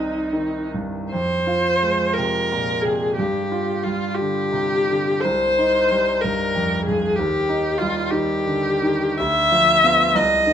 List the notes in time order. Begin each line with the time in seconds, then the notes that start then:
Already playing: C2 D#3 C4 D#4
0.33 D#3
0.74 G2
1.11 F2 C5
1.47 F4
1.83 G#3
2.14 A#4
2.18 C3
2.52 A#2
2.81 C3 G#4
3.16 G2 G4
3.52 F4
3.83 G3 F4
4.15 G4
4.19 D3
4.52 C3
4.88 D3
5.20 C5
5.25 C2
5.58 D#4
5.91 G3
6.21 G2 A#4
6.55 F2
6.85 G2 G#4
7.15 D#2 G4
7.49 D#4
7.78 G3 F4
8.11 D#3 G4
8.46 D3
8.83 D#3
9.17 D2 E5
9.52 F3
9.84 B3 F4
10.15 C2 D#5
10.47 D#3